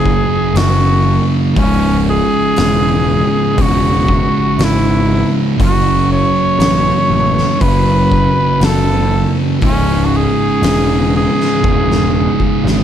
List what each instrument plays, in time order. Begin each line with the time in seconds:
Already playing: picked electric bass F#1, distorted electric guitar F#2 C#3 F#3, cor anglais G#4
0.06 kick
0.54 picked electric bass F#1, cor anglais F#4, snare, open hi-hat
1.55 picked electric bass C#1, distorted electric guitar C#2 G#2, cor anglais C#4, kick, open hi-hat
1.60 distorted electric guitar C#3
2.09 cor anglais G#4
2.56 picked electric bass E1, snare, open hi-hat
3.56 picked electric bass E1, distorted electric guitar C#2 G#2, kick, open hi-hat
3.60 distorted electric guitar C#3, cor anglais F#4
4.08 kick
4.58 picked electric bass G#1, snare, open hi-hat
4.63 cor anglais E4
5.57 picked electric bass F#1, distorted electric guitar F#2 C#3, kick, open hi-hat
5.61 distorted electric guitar F#3, cor anglais F#4
6.12 cor anglais C#5
6.59 picked electric bass A1, snare, open hi-hat
7.10 picked electric bass A1
7.38 snare
7.58 picked electric bass F#1, distorted electric guitar F#2 C#3 F#3, cor anglais B4, kick, open hi-hat
8.12 kick
8.60 picked electric bass F#1, cor anglais A4, snare, open hi-hat
9.61 picked electric bass C#1, distorted electric guitar C#2 G#2 C#3, kick, open hi-hat
9.65 cor anglais C#4
10.05 cor anglais F#4
10.17 cor anglais G#4
10.62 picked electric bass E1, snare, open hi-hat
11.17 cor anglais G#4
11.40 snare
11.62 picked electric bass E1, distorted electric guitar C#2 G#2 C#3, kick, high tom
11.92 snare
12.40 kick
12.64 picked electric bass G#1, snare